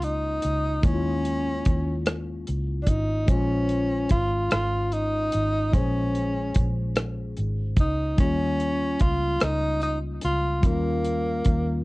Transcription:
Already playing: C#2 G#3 A#3 C#4 F4
0.02 D#4, closed hi-hat
0.42 C#2, closed hi-hat
0.82 D#2 G#3 A#3 C#4, kick, closed hi-hat
0.87 E4
0.94 F4
1.25 closed hi-hat
1.65 D#2, kick, closed hi-hat
2.06 cross-stick, closed hi-hat
2.47 C#2, closed hi-hat
2.83 D4, closed hi-hat
2.87 G#1 D#4, kick
3.26 A#1 G#3 C#4 C5, kick, closed hi-hat
3.32 F4
3.69 closed hi-hat
4.09 G#1 F4, kick, closed hi-hat
4.51 G#1 F4, cross-stick, closed hi-hat
4.92 D#4, closed hi-hat
5.32 G#1, closed hi-hat
5.71 A#1 G#3 C#4 C5, kick, closed hi-hat
5.77 G#4
6.15 closed hi-hat
6.54 A#1, kick, closed hi-hat
6.96 cross-stick, closed hi-hat
7.37 G#1, closed hi-hat
7.77 C#2 D#4, kick, closed hi-hat
8.17 D#2 G3 A#3 C#4, kick, closed hi-hat
8.22 F4
8.60 closed hi-hat
9.00 C#2 F4, kick, closed hi-hat
9.40 C#2 D#4, cross-stick, closed hi-hat
9.82 D#4, closed hi-hat
10.22 C#2 F4, closed hi-hat
10.61 D#2 G3 A#3 C#4, kick, closed hi-hat
10.66 A#3 F4
11.05 closed hi-hat
11.45 D#2, kick, closed hi-hat

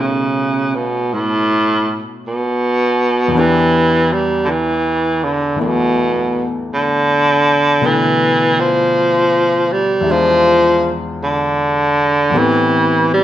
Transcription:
Already playing: B2 F#3 A3 C#4 D#4
0.00 C#3
0.75 B2
1.13 A2
2.27 B2
3.28 E2 E3
3.34 B3 D4
3.39 E3 G4
4.13 G3
4.45 D3 E3
5.23 D3
5.56 E3 A3 B3 E4
5.61 B2
6.74 D3
7.81 B2 D3 A3 D4 B4
7.86 E3
8.60 F3
9.72 G3
10.01 E2 E4
10.06 G#3 D4
10.11 F3 F4
11.23 D3
12.30 A2 E3 B3 C4
12.34 E3 G4
13.14 G3

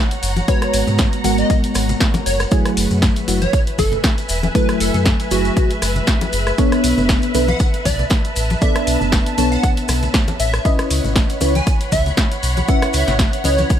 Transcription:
Already playing: C#5 F#5 A#5
0.11 closed hi-hat, maracas
0.23 F#1, open hi-hat, maracas
0.36 closed hi-hat, high conga, maracas
0.48 G#3 B3 F#4 B4 C#5, kick, closed hi-hat, maracas
0.62 cross-stick, closed hi-hat, maracas
0.73 G#1, open hi-hat, maracas
0.87 G#2, low conga, maracas
0.98 kick, snare, closed hi-hat, maracas
1.13 closed hi-hat, maracas
1.24 G#1 G#3 B3 F#4 A#4 F#5, open hi-hat, muted conga, maracas
1.38 D#5, closed hi-hat, maracas
1.50 kick, closed hi-hat, low conga, maracas
1.64 closed hi-hat, maracas
1.75 G#1, cross-stick, open hi-hat, muted conga, maracas
1.89 closed hi-hat, low conga, maracas
2.00 kick, snare, closed hi-hat, maracas
2.14 closed hi-hat, muted conga, high conga, maracas
2.26 F#1 C#5, open hi-hat, maracas
2.40 cross-stick, closed hi-hat, maracas
2.51 F#3 A3 E4 G#4 B4, kick, closed hi-hat, maracas
2.65 cross-stick, closed hi-hat, maracas
2.77 F#1, open hi-hat, maracas
2.89 F#2 E5, low conga, maracas
3.02 kick, snare, closed hi-hat, maracas
3.16 closed hi-hat, maracas
3.28 F#1 F#3 A3 E4 F#4, open hi-hat, muted conga, maracas
3.41 C#5, closed hi-hat, high conga, maracas
3.53 kick, closed hi-hat, maracas
3.67 closed hi-hat, maracas
3.74 G#5
3.78 F#1 A4, kick, open hi-hat, high conga, maracas
3.92 closed hi-hat, low conga, maracas
4.04 kick, snare, closed hi-hat, muted conga, maracas
4.18 closed hi-hat, maracas
4.29 E1, open hi-hat, maracas
4.43 closed hi-hat, high conga, maracas
4.55 F#3 A3 E4 A4 B4, kick, closed hi-hat, maracas
4.69 cross-stick, closed hi-hat, maracas
4.80 F#1 A4, open hi-hat, maracas
4.94 F#2, closed hi-hat, low conga, maracas
5.05 kick, snare, closed hi-hat, maracas
5.20 closed hi-hat, maracas
5.31 F#1 F#3 A3 E4 F#4 G#4, open hi-hat, muted conga, maracas
5.45 closed hi-hat, maracas
5.57 kick, closed hi-hat, low conga, maracas
5.70 closed hi-hat, maracas
5.82 F#1, cross-stick, open hi-hat, muted conga, maracas
5.96 closed hi-hat, low conga, maracas
6.07 kick, snare, closed hi-hat, maracas
6.21 closed hi-hat, muted conga, high conga, maracas
6.33 F#1, open hi-hat, maracas
6.47 cross-stick, closed hi-hat, maracas
6.58 B3 D4 A4 C#5, kick, closed hi-hat, maracas
6.72 cross-stick, closed hi-hat, maracas
6.84 B1, open hi-hat, maracas
6.98 F#1, low conga, maracas
7.09 kick, snare, closed hi-hat, maracas
7.22 closed hi-hat, maracas
7.34 B1 B3 D4 A4 B4, open hi-hat, muted conga, maracas
7.48 F#5, closed hi-hat, high conga, maracas
7.59 kick, closed hi-hat, maracas
7.65 A5
7.74 closed hi-hat, maracas
7.85 B1 D5, kick, open hi-hat, high conga, maracas
7.99 closed hi-hat, low conga, maracas
8.10 kick, snare, closed hi-hat, muted conga, maracas
8.24 closed hi-hat, maracas
8.36 A1, open hi-hat, maracas
8.50 closed hi-hat, high conga, maracas
8.61 B3 D4 A4 D5 E5, kick, closed hi-hat, maracas
8.76 cross-stick, closed hi-hat, maracas
8.87 B1, open hi-hat, maracas
9.01 F#1, low conga, maracas
9.12 kick, snare, closed hi-hat, maracas
9.26 closed hi-hat, maracas
9.38 B1 B3 D4 A4 C#5 A5, open hi-hat, muted conga, maracas
9.52 F#5, closed hi-hat, maracas
9.63 kick, closed hi-hat, low conga, maracas
9.77 closed hi-hat, maracas
9.88 B1, cross-stick, open hi-hat, muted conga, maracas
10.03 closed hi-hat, low conga, maracas
10.14 kick, snare, closed hi-hat, maracas
10.28 closed hi-hat, muted conga, high conga, maracas
10.40 A1 E5, open hi-hat, maracas
10.54 cross-stick, closed hi-hat, maracas
10.65 C#4 E4 B4 C#5 D#5, kick, closed hi-hat, maracas
10.79 cross-stick, closed hi-hat, maracas
10.91 C#2, open hi-hat, maracas
10.97 F#5
11.03 G#1 B5, low conga, maracas
11.16 kick, snare, closed hi-hat, maracas
11.29 closed hi-hat, maracas
11.41 C#2 C#4 E4 B4 C#5, open hi-hat, muted conga, maracas
11.55 G#5, closed hi-hat, high conga, maracas
11.67 kick, closed hi-hat, maracas
11.81 closed hi-hat, maracas
11.92 C#2 E5, kick, open hi-hat, high conga, maracas
12.06 closed hi-hat, low conga, maracas
12.17 kick, snare, closed hi-hat, muted conga, maracas
12.32 closed hi-hat, maracas
12.43 B1, open hi-hat, maracas
12.57 closed hi-hat, high conga, maracas
12.68 C#4 E4 B4 E5 F#5, kick, closed hi-hat, maracas
12.82 cross-stick, closed hi-hat, maracas
12.93 C#2 E5, open hi-hat, maracas
13.07 G#1, snare, closed hi-hat, low conga, maracas
13.19 kick, snare, closed hi-hat, maracas
13.33 closed hi-hat, maracas
13.44 C#2 C#4 E4 B4 C#5 D#5, open hi-hat, muted conga, maracas
13.58 closed hi-hat, high conga, maracas
13.70 kick, closed hi-hat, low conga, maracas

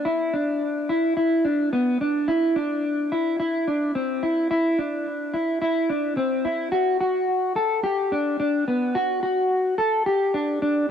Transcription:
0.05 E4
0.34 D4
0.89 E4
1.17 E4
1.45 D4
1.73 B3
2.01 D4
2.28 E4
2.56 D4
3.12 E4
3.40 E4
3.67 D4
3.95 C4
4.23 E4
4.51 E4
4.78 D4
5.34 E4
5.62 E4
5.90 D4
6.17 C4
6.45 E4
6.72 F#4
7.01 F#4
7.56 A4
7.84 G4
8.12 D4
8.40 D4
8.68 B3
8.95 F#4
9.23 F#4
9.78 A4
10.06 G4
10.34 D4
10.62 D4

